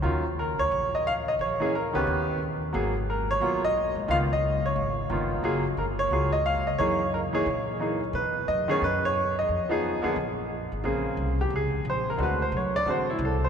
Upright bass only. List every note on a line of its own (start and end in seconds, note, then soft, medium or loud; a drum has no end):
0.03 0.54 D#2 medium
0.59 0.70 D2 medium
0.71 1.35 A#1 medium
1.39 1.90 A#1 medium
1.95 2.06 C#2 medium
2.07 2.71 D#2 medium
2.74 3.38 G#1 medium
3.41 3.92 B1 medium
3.95 4.08 G#2 medium
4.08 4.73 C#2 medium
4.76 5.08 G#1 medium
5.10 5.41 G1 medium
5.44 5.75 F#1 medium
5.77 6.09 G1 medium
6.11 6.75 C#2 medium
6.79 7.30 F#2 medium
7.34 muted upright bass stroke soft
7.46 8.11 A#2 medium
8.13 8.45 B2 medium
8.48 8.79 F#2 medium
8.82 9.46 F#2 medium
9.49 10.00 F2 medium
10.04 muted upright bass stroke soft
10.16 10.67 A#1 medium
10.72 10.83 G#1 medium
10.84 11.16 A#1 medium
11.17 11.50 C2 medium
11.50 11.84 C#2 medium
11.85 12.18 A#1 medium
12.18 12.51 D2 medium
12.52 12.85 B1 medium
12.85 13.18 A1 medium
13.19 13.49 C2 loud